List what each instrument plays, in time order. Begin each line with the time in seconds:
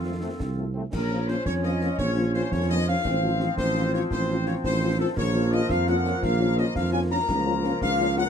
Already playing: tuba F2, woodwind section C4 A4, flute section F4, trumpet section F4
0.05 french horn section F3 A3 C4
0.22 french horn section F3 A3 C4, trombone section A3 C4
0.40 tuba C2, concert bass drum, snare
0.58 french horn section F3 A3 C4
0.74 french horn section F3 A3 C4, trombone section A3 C4
0.92 tuba A#1, trombone section F3 C#4, woodwind section F4 C#5, flute section A#4, trumpet section A#4, concert bass drum, snare, crash
1.10 french horn section F3 A#3 C#4
1.28 french horn section F3 A#3 C#4, flute section C5, trumpet section C5, snare
1.45 tuba F2, trumpet section C#5, flute section C#5, concert bass drum, snare
1.63 french horn section F3 A#3 C#4, trumpet section D#5, flute section D#5, snare
1.81 french horn section F3 A#3 C#4, snare
1.98 tuba A#1, trumpet section C#5, flute section C#5, concert bass drum, snare
2.17 french horn section F3 A#3 C#4
2.33 french horn section F3 A#3 C#4, trumpet section C5, flute section C5, snare
2.51 tuba F2, trumpet section C#5, flute section C#5, concert bass drum, snare
2.69 french horn section F3 A#3 C#4, trumpet section D#5, flute section D#5
2.87 french horn section F3 A#3 C#4, trumpet section F5, flute section F5
3.05 tuba A1, trombone section F3 C4, woodwind section F4 C5, concert bass drum, snare, crash
3.23 french horn section F3 C4 F4
3.40 french horn section F3 C4 F4, snare
3.58 tuba A1, flute section C5, trumpet section C5, concert bass drum, snare
3.76 french horn section F3 C4 F4, snare
3.93 french horn section F3 C4 F4, flute section C#5, trumpet section C#5, snare
4.11 tuba A1, flute section C5, trumpet section C5, concert bass drum, snare
4.29 french horn section F3 C4 F4
4.46 french horn section F3 C4 F4, trumpet section C#5, flute section C#5, snare
4.64 tuba A1, trumpet section C5, flute section C5, concert bass drum, snare
4.82 french horn section F3 C4 F4
4.99 french horn section F3 C4 F4, trumpet section A4, flute section A4
5.17 tuba A#1, trombone section F3 A#3, woodwind section F4 A#4, flute section C#5, trumpet section C#5, concert bass drum, snare, crash
5.35 french horn section A#3 C#4 F4
5.52 french horn section A#3 C#4 F4, trumpet section D#5, flute section D#5, snare
5.69 tuba F2, trumpet section F5, flute section F5, concert bass drum, snare
5.87 french horn section A#3 C#4 F4, trumpet section F#5, flute section F#5, snare
6.05 french horn section A#3 C#4 F4, snare
6.22 tuba A#1, trumpet section F5, flute section F5, concert bass drum, snare
6.40 french horn section A#3 C#4 F4
6.57 french horn section A#3 C#4 F4, trumpet section D#5, flute section D#5, snare
6.75 tuba F2, flute section F5, trumpet section F5, concert bass drum, snare
6.92 french horn section A#3 C#4 F4, trumpet section G#5, flute section G#5
7.10 french horn section A#3 C#4 F4, trumpet section A#5, flute section A#5
7.28 tuba C#2, trombone section F3 A#3, woodwind section F4 A#4, concert bass drum, snare, crash
7.45 french horn section A#3 C#4 F4
7.63 french horn section A#3 C#4 F4, snare
7.82 tuba C#2, trumpet section F5, flute section F5, concert bass drum, snare
7.99 french horn section A#3 C#4 F4, snare
8.17 french horn section A#3 C#4 F4, trumpet section F#5, flute section F#5, snare